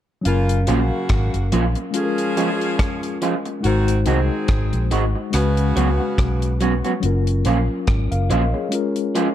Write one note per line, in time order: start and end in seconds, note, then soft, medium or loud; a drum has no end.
0.21 0.59 C#3 medium
0.21 1.89 F#3 medium
0.21 1.90 C#4 medium
0.21 1.91 F5 medium
0.21 closed hi-hat medium
0.25 0.64 F#1 loud
0.25 0.59 A#3 medium
0.25 0.59 F4 medium
0.25 1.92 A#4 medium
0.49 closed hi-hat medium
0.67 0.89 A#1 medium
0.67 1.48 C#3 medium
0.67 0.79 F3 medium
0.67 1.48 A#3 medium
0.67 0.79 A#3 medium
0.67 0.79 C#4 medium
0.67 0.79 F4 loud
0.67 1.48 F#4 medium
0.67 closed hi-hat medium
1.09 1.32 G#1 medium
1.09 kick loud
1.09 cross-stick loud
1.09 closed hi-hat medium
1.34 1.51 F#1 medium
1.34 closed hi-hat soft
1.52 1.74 A#1 loud
1.52 1.64 F3 medium
1.52 1.64 A#3 medium
1.52 1.64 C#4 medium
1.52 1.64 F4 loud
1.52 closed hi-hat medium
1.75 muted clean electric guitar stroke soft
1.75 closed hi-hat soft
1.91 3.59 G#3 medium
1.91 3.60 C#4 medium
1.91 3.18 C#4 medium
1.91 3.18 G#4 loud
1.91 closed hi-hat medium
1.95 3.18 F3 loud
1.95 3.61 F4 medium
1.95 2.03 A4 medium
2.04 3.65 A#4 medium
2.18 closed hi-hat soft
2.37 2.48 F3 medium
2.37 2.49 G#3 medium
2.37 2.49 C#4 medium
2.37 2.49 F4 medium
2.37 closed hi-hat medium
2.61 closed hi-hat soft
2.79 kick loud
2.79 cross-stick loud
2.79 closed hi-hat medium
3.03 closed hi-hat soft
3.22 3.33 F3 medium
3.22 3.33 G#3 medium
3.22 3.33 C#4 medium
3.22 3.34 F4 medium
3.22 closed hi-hat medium
3.45 muted clean electric guitar stroke soft
3.45 closed hi-hat soft
3.61 4.03 G#1 loud
3.61 3.98 D#3 medium
3.61 5.28 G#3 medium
3.61 3.98 C4 medium
3.61 5.29 D#4 medium
3.61 3.98 F#4 medium
3.61 closed hi-hat medium
3.65 5.30 F#4 medium
3.65 5.31 C5 medium
3.88 closed hi-hat medium
4.05 4.28 C2 medium
4.05 4.86 D#3 medium
4.05 4.18 D#3 medium
4.05 4.18 G#3 medium
4.05 4.87 C4 medium
4.05 4.18 C4 medium
4.05 4.18 F#4 medium
4.05 4.87 G#4 medium
4.05 closed hi-hat medium
4.48 4.71 G#1 medium
4.48 kick loud
4.48 cross-stick medium
4.48 closed hi-hat medium
4.73 4.90 A#1 medium
4.73 closed hi-hat soft
4.91 5.13 G#1 medium
4.91 5.02 D#3 medium
4.91 5.03 G#3 medium
4.91 5.03 C4 medium
4.91 5.03 F#4 medium
4.91 closed hi-hat medium
5.15 muted clean electric guitar stroke soft
5.31 5.72 C#2 medium
5.31 6.56 C#3 medium
5.31 6.98 G#3 medium
5.31 6.56 B3 medium
5.31 6.99 C#4 soft
5.31 6.56 F#4 loud
5.31 cross-stick medium
5.31 closed hi-hat medium
5.35 7.00 F#4 medium
5.35 7.01 B4 medium
5.57 closed hi-hat soft
5.76 5.98 C#2 medium
5.76 5.87 F#3 medium
5.76 5.88 B3 medium
5.76 5.88 C#4 medium
5.76 5.88 F#4 medium
5.76 closed hi-hat medium
6.00 muted clean electric guitar stroke soft
6.18 6.80 B1 medium
6.18 kick loud
6.18 cross-stick loud
6.18 closed hi-hat medium
6.42 closed hi-hat soft
6.61 6.72 F#3 medium
6.61 6.72 B3 medium
6.61 6.72 C#4 medium
6.61 6.73 F#4 medium
6.61 closed hi-hat medium
6.85 6.92 F#3 medium
6.85 6.92 B3 medium
6.85 6.92 C#4 medium
6.85 6.91 F#4 medium
6.85 closed hi-hat soft
7.00 7.42 F#1 loud
7.00 8.67 F#3 medium
7.00 8.68 C#4 medium
7.00 8.69 F4 medium
7.00 closed hi-hat medium
7.06 7.46 A#4 medium
7.27 closed hi-hat medium
7.45 7.67 A#1 medium
7.45 7.57 F3 medium
7.45 7.57 A#3 medium
7.45 7.57 C#4 medium
7.45 7.57 F4 medium
7.45 closed hi-hat medium
7.87 8.10 G#1 medium
7.87 kick loud
7.87 cross-stick loud
7.87 closed hi-hat medium
8.11 8.29 F#1 medium
8.11 8.29 A#4 soft
8.11 8.29 F5 medium
8.11 closed hi-hat soft
8.30 8.52 A#1 medium
8.30 8.41 F3 loud
8.30 8.42 A#3 medium
8.30 8.42 C#4 medium
8.30 8.42 F4 loud
8.30 8.53 A#4 medium
8.30 8.52 D#5 medium
8.30 closed hi-hat medium
8.53 8.94 G#4 soft
8.53 8.94 C#5 medium
8.53 muted clean electric guitar stroke soft
8.69 9.35 G#3 medium
8.69 9.35 C#4 medium
8.69 9.35 F4 medium
8.69 closed hi-hat medium
8.75 9.35 A#4 medium
8.96 closed hi-hat medium
9.15 9.26 F3 medium
9.15 9.26 G#3 medium
9.15 9.27 C#4 loud
9.15 9.27 F4 medium
9.15 closed hi-hat medium